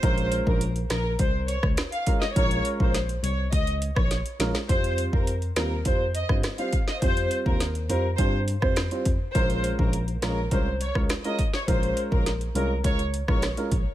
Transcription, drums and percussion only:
0.03 kick, closed hi-hat
0.18 closed hi-hat
0.32 closed hi-hat
0.47 kick
0.61 closed hi-hat
0.76 closed hi-hat
0.90 cross-stick, snare, closed hi-hat
1.19 kick, closed hi-hat
1.48 closed hi-hat
1.63 kick, cross-stick
1.77 cross-stick, snare, closed hi-hat
1.92 closed hi-hat
2.07 kick, closed hi-hat
2.22 snare
2.36 kick, closed hi-hat
2.51 closed hi-hat
2.65 closed hi-hat
2.80 kick
2.94 snare, closed hi-hat
3.09 closed hi-hat
3.24 closed hi-hat
3.53 kick, closed hi-hat
3.67 closed hi-hat
3.82 closed hi-hat
3.96 kick, cross-stick
4.11 snare, closed hi-hat
4.26 closed hi-hat
4.40 snare, closed hi-hat
4.55 snare
4.69 kick, closed hi-hat
4.84 closed hi-hat
4.98 closed hi-hat
5.13 kick
5.27 closed hi-hat
5.42 closed hi-hat
5.56 cross-stick, snare, closed hi-hat
5.85 kick, closed hi-hat
6.15 closed hi-hat
6.29 kick, cross-stick
6.43 cross-stick, snare, closed hi-hat
6.58 closed hi-hat
6.73 kick, closed hi-hat
6.88 snare
7.02 kick, closed hi-hat
7.17 closed hi-hat
7.31 closed hi-hat
7.46 kick
7.60 snare, closed hi-hat
7.75 closed hi-hat
7.90 closed hi-hat
8.18 kick, closed hi-hat
8.48 closed hi-hat
8.62 kick, cross-stick
8.76 cross-stick, snare, closed hi-hat
8.91 closed hi-hat
9.05 kick, closed hi-hat
9.35 kick, closed hi-hat
9.50 closed hi-hat
9.64 closed hi-hat
9.79 kick
9.93 closed hi-hat
10.08 closed hi-hat
10.22 cross-stick, snare, closed hi-hat
10.51 kick, closed hi-hat
10.81 closed hi-hat
10.95 kick, cross-stick
11.09 cross-stick, snare, closed hi-hat
11.24 closed hi-hat
11.39 kick, closed hi-hat
11.54 snare
11.68 kick, closed hi-hat
11.83 closed hi-hat
11.97 closed hi-hat
12.12 kick
12.26 snare, closed hi-hat
12.41 closed hi-hat
12.55 closed hi-hat
12.84 kick, closed hi-hat
12.99 closed hi-hat
13.14 closed hi-hat
13.28 kick, cross-stick
13.42 cross-stick, snare, closed hi-hat
13.57 closed hi-hat
13.72 kick, closed hi-hat

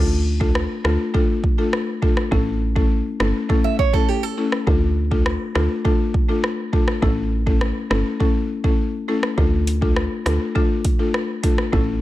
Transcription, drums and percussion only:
0.41 kick
0.55 cross-stick
0.85 cross-stick
1.14 kick
1.44 kick
1.73 cross-stick
2.02 kick
2.17 cross-stick
2.32 kick
2.76 kick
3.20 cross-stick
3.50 kick
3.79 kick
3.94 kick
4.52 cross-stick
4.67 kick
5.12 kick
5.26 cross-stick
5.55 cross-stick
5.85 kick
6.14 kick
6.44 cross-stick
6.73 kick
6.88 cross-stick
7.02 kick
7.47 kick
7.61 cross-stick
7.91 cross-stick
8.20 kick
8.64 kick
9.23 cross-stick
9.38 kick
9.67 closed hi-hat
9.82 kick
9.96 cross-stick
10.26 cross-stick, closed hi-hat
10.56 kick
10.85 kick, closed hi-hat
11.14 cross-stick
11.44 kick, closed hi-hat
11.58 cross-stick
11.73 kick

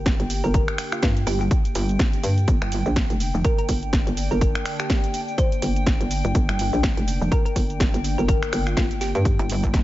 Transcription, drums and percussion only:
0.06 kick, snare, closed hi-hat, cabasa
0.20 closed hi-hat, cabasa
0.30 open hi-hat, cabasa
0.44 cabasa
0.54 kick, closed hi-hat, cabasa
0.68 finger snap, closed hi-hat
0.78 finger snap, open hi-hat, cabasa
0.92 finger snap, closed hi-hat, cabasa
1.03 kick, snare, closed hi-hat, cabasa
1.17 closed hi-hat, cabasa
1.27 open hi-hat, cabasa
1.41 cabasa
1.51 kick, closed hi-hat, cabasa
1.65 closed hi-hat, cabasa
1.75 open hi-hat, cabasa
1.89 closed hi-hat, cabasa
1.99 kick, snare, closed hi-hat, cabasa
2.13 closed hi-hat, cabasa
2.24 open hi-hat, cabasa
2.38 closed hi-hat, cabasa
2.48 kick, closed hi-hat, cabasa
2.62 finger snap, closed hi-hat
2.72 open hi-hat, cabasa
2.86 cabasa
2.96 kick, snare, closed hi-hat, cabasa
3.10 closed hi-hat, cabasa
3.20 open hi-hat, cabasa
3.35 cabasa
3.45 kick, closed hi-hat, cabasa
3.59 closed hi-hat, cabasa
3.69 kick, open hi-hat, cabasa
3.83 closed hi-hat, cabasa
3.93 kick, snare, closed hi-hat, cabasa
4.07 closed hi-hat, cabasa
4.17 open hi-hat, cabasa
4.31 cabasa
4.41 kick, closed hi-hat, cabasa
4.55 finger snap, closed hi-hat
4.66 finger snap, open hi-hat, cabasa
4.80 finger snap, closed hi-hat, cabasa
4.90 kick, snare, closed hi-hat, cabasa
5.04 closed hi-hat, cabasa
5.14 open hi-hat, cabasa
5.28 cabasa
5.38 kick, closed hi-hat, cabasa
5.52 closed hi-hat, cabasa
5.62 open hi-hat, cabasa
5.76 closed hi-hat, cabasa
5.87 kick, snare, closed hi-hat, cabasa
6.01 closed hi-hat, cabasa
6.11 open hi-hat, cabasa
6.25 closed hi-hat, cabasa
6.35 kick, closed hi-hat, cabasa
6.49 finger snap, closed hi-hat
6.59 open hi-hat, cabasa
6.73 cabasa
6.83 kick, snare, closed hi-hat, cabasa
6.97 closed hi-hat, cabasa
7.08 open hi-hat, cabasa
7.22 cabasa
7.32 kick, closed hi-hat, cabasa
7.46 closed hi-hat, cabasa
7.56 kick, open hi-hat, cabasa
7.70 closed hi-hat, cabasa
7.80 kick, snare, closed hi-hat, cabasa
7.94 closed hi-hat, cabasa
8.04 open hi-hat, cabasa
8.19 cabasa
8.28 kick, closed hi-hat, cabasa
8.43 finger snap, closed hi-hat, cabasa
8.53 finger snap, open hi-hat, cabasa
8.67 finger snap, closed hi-hat, cabasa
8.77 kick, snare, closed hi-hat, cabasa
8.91 closed hi-hat, cabasa
9.01 snare, open hi-hat, cabasa
9.15 closed hi-hat, cabasa
9.25 kick, closed hi-hat, cabasa
9.39 closed hi-hat, cabasa
9.50 open hi-hat, cabasa
9.63 kick, closed hi-hat, cabasa
9.74 kick, snare, closed hi-hat, cabasa

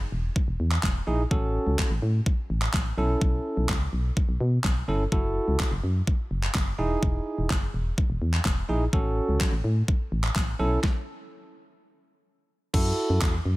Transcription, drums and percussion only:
0.36 kick
0.72 clap
0.83 kick, snare, clap
1.31 kick
1.79 kick, snare, clap
2.26 kick
2.62 clap
2.74 kick, snare, clap
3.21 kick
3.69 kick, snare, clap
4.17 kick
4.64 kick, snare, clap
5.12 kick
5.60 kick, snare, clap
6.07 kick
6.43 clap
6.55 kick, snare, clap
7.03 kick
7.50 kick, snare, clap
7.98 kick
8.33 clap
8.45 kick, snare, clap
8.93 kick
9.40 kick, snare, clap
9.88 kick
10.24 clap
10.36 kick, snare, clap
10.84 kick, snare
12.74 kick, crash
13.22 kick, snare, clap

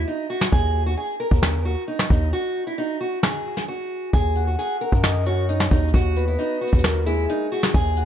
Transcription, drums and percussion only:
0.41 snare, clap
0.52 kick
1.31 kick
1.43 snare, clap
1.99 snare, clap
2.10 kick
3.23 snare, clap
3.57 snare
4.13 kick, closed hi-hat
4.36 closed hi-hat
4.59 closed hi-hat
4.81 closed hi-hat
4.92 kick
5.04 snare, clap
5.26 closed hi-hat
5.49 closed hi-hat
5.60 snare, clap
5.71 kick, closed hi-hat
5.77 closed hi-hat
5.83 closed hi-hat
5.88 closed hi-hat
5.94 kick, closed hi-hat
6.16 closed hi-hat
6.39 closed hi-hat
6.62 closed hi-hat
6.67 closed hi-hat
6.73 kick, closed hi-hat
6.78 closed hi-hat
6.84 snare, clap
7.06 closed hi-hat
7.29 closed hi-hat
7.52 open hi-hat
7.63 snare, clap
7.74 kick, closed hi-hat
7.96 closed hi-hat

